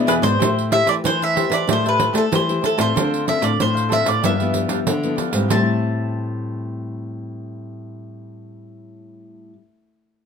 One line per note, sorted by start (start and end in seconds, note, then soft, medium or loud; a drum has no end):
0.00 0.37 B2 medium
0.00 0.35 B3 medium
0.00 0.36 D4 medium
0.00 0.36 E4 medium
0.00 0.36 G#4 medium
0.06 0.22 E2 medium
0.06 0.22 E4 medium
0.06 0.22 G#4 medium
0.06 0.22 B4 medium
0.06 0.13 B4 medium
0.06 0.21 D5 medium
0.06 pandeiro medium
0.22 0.37 G#2 medium
0.22 0.39 G#4 soft
0.22 0.38 B4 soft
0.22 0.73 C5 medium
0.22 0.38 D5 soft
0.22 pandeiro medium
0.39 0.81 A2 medium
0.39 1.01 A3 soft
0.39 0.67 E4 soft
0.39 0.70 G4 medium
0.39 0.67 G4 medium
0.39 0.71 C5 medium
0.39 0.67 C5 medium
0.39 0.71 E5 medium
0.39 0.71 A5 medium
0.39 pandeiro medium
0.59 pandeiro soft
0.71 1.13 E4 medium
0.71 0.84 G4 soft
0.71 1.13 G4 medium
0.71 0.85 C5 soft
0.71 1.13 C5 medium
0.71 0.87 E5 medium
0.71 0.86 E5 soft
0.71 0.86 A5 soft
0.71 pandeiro medium
0.86 1.00 E3 medium
0.86 0.96 G4 medium
0.86 0.96 C5 medium
0.86 0.94 D5 medium
0.86 0.96 E5 medium
0.86 0.96 A5 medium
0.86 pandeiro medium
1.04 1.44 E3 medium
1.04 1.65 E3 soft
1.04 1.21 C5 medium
1.04 pandeiro medium
1.21 1.35 C5 soft
1.21 1.35 E5 soft
1.21 1.54 E5 medium
1.21 1.35 A5 soft
1.21 pandeiro soft
1.35 1.66 E4 soft
1.35 1.50 G4 medium
1.35 1.66 G4 soft
1.35 1.51 C5 medium
1.35 1.66 C5 medium
1.35 1.51 E5 medium
1.35 1.49 A5 medium
1.35 pandeiro medium
1.50 1.64 E3 medium
1.50 1.67 C5 soft
1.50 1.66 E5 soft
1.50 1.66 A5 soft
1.50 pandeiro medium
1.54 1.69 D5 medium
1.68 2.08 A2 medium
1.68 2.29 A3 medium
1.68 1.82 G4 medium
1.68 1.83 C5 medium
1.68 1.83 E5 medium
1.68 1.83 A5 medium
1.68 pandeiro medium
1.73 1.86 C5 medium
1.84 2.27 E4 medium
1.84 2.27 G4 medium
1.84 1.98 C5 soft
1.84 1.98 E5 soft
1.84 1.99 A5 soft
1.84 pandeiro soft
1.89 2.17 B4 medium
1.98 2.12 G4 soft
1.98 2.13 C5 soft
1.98 2.13 E5 soft
1.98 2.13 A5 medium
1.98 pandeiro medium
2.13 2.28 A3 medium
2.13 2.23 G4 medium
2.13 2.24 C5 medium
2.13 2.24 E5 medium
2.13 2.24 A5 medium
2.13 pandeiro medium
2.18 2.33 A4 medium
2.32 2.59 E3 medium
2.32 2.93 E3 medium
2.32 2.41 E4 medium
2.32 2.42 G4 soft
2.32 2.42 C5 soft
2.32 2.65 C5 medium
2.32 pandeiro medium
2.49 2.75 E4 medium
2.49 2.75 G4 medium
2.49 2.75 C5 medium
2.49 pandeiro soft
2.62 2.77 G4 medium
2.62 2.81 A4 medium
2.62 2.77 C5 medium
2.62 2.77 E5 medium
2.62 2.76 A5 medium
2.62 pandeiro soft
2.77 2.92 A2 medium
2.77 3.22 C4 medium
2.77 3.22 F4 medium
2.77 3.22 A4 medium
2.77 2.94 C5 soft
2.77 3.25 C5 medium
2.77 2.93 E5 soft
2.77 2.93 A5 soft
2.77 pandeiro medium
2.94 3.56 D3 soft
2.94 3.36 D3 medium
2.94 3.24 D4 medium
2.94 3.25 A4 medium
2.94 3.26 C5 medium
2.94 3.26 F5 medium
2.94 pandeiro medium
3.14 pandeiro soft
3.25 3.68 C4 soft
3.25 3.40 D4 soft
3.25 3.69 F4 soft
3.25 3.40 A4 soft
3.25 3.69 A4 medium
3.25 3.40 C5 soft
3.25 3.43 E5 medium
3.25 3.41 F5 medium
3.25 pandeiro soft
3.41 3.56 A2 medium
3.41 3.51 D4 medium
3.41 3.51 A4 medium
3.41 3.51 C5 medium
3.41 3.58 D5 medium
3.41 3.52 F5 medium
3.41 pandeiro medium
3.60 4.20 A2 medium
3.60 4.00 A2 medium
3.60 3.93 C5 medium
3.60 pandeiro medium
3.75 3.88 A4 soft
3.75 3.89 C5 soft
3.75 3.90 F5 soft
3.75 pandeiro soft
3.89 4.11 C4 medium
3.89 4.05 D4 medium
3.89 4.12 F4 soft
3.89 4.04 A4 medium
3.89 4.12 A4 medium
3.89 4.03 C5 medium
3.89 4.01 F5 medium
3.89 pandeiro medium
3.93 4.07 E5 medium
4.03 4.20 A2 medium
4.03 4.21 A4 soft
4.03 4.20 C5 soft
4.03 4.20 F5 soft
4.03 pandeiro medium
4.08 4.24 D5 medium
4.22 4.64 G2 medium
4.22 4.85 G2 soft
4.22 4.33 F3 medium
4.22 4.33 B3 soft
4.22 4.37 D4 medium
4.22 4.34 E4 medium
4.22 4.37 G4 medium
4.22 4.38 B4 medium
4.22 5.16 E5 medium
4.22 4.36 F5 medium
4.22 pandeiro medium
4.38 4.99 F3 medium
4.38 4.53 G4 soft
4.38 4.53 B4 soft
4.38 4.53 F5 soft
4.38 pandeiro soft
4.42 4.99 B3 medium
4.42 4.99 E4 medium
4.53 4.67 D4 soft
4.53 4.68 G4 medium
4.53 4.68 B4 soft
4.53 4.68 F5 soft
4.53 pandeiro soft
4.68 4.84 G3 medium
4.68 4.79 D4 medium
4.68 4.79 G4 medium
4.68 4.79 B4 medium
4.68 4.79 F5 medium
4.68 pandeiro medium
4.87 5.14 D3 medium
4.87 5.48 D3 soft
4.87 pandeiro medium
5.03 5.30 F3 medium
5.03 5.31 B3 soft
5.03 5.31 E4 medium
5.03 pandeiro soft
5.16 5.32 D4 medium
5.16 5.32 G4 medium
5.16 5.31 B4 medium
5.16 5.30 F5 medium
5.16 pandeiro soft
5.31 5.47 G#2 medium
5.31 5.53 G3 medium
5.31 5.57 C4 medium
5.31 5.62 E4 medium
5.31 5.47 G4 soft
5.31 5.48 B4 soft
5.31 5.48 F5 soft
5.31 pandeiro medium
5.48 9.55 A2 soft
5.48 9.53 A2 medium
5.48 9.55 G4 medium
5.48 9.56 C5 medium
5.48 9.57 E5 medium
5.48 9.53 A5 medium
5.48 pandeiro medium
5.52 9.58 G3 medium
5.52 9.57 A5 medium
5.59 9.61 C4 medium
5.63 9.63 E4 medium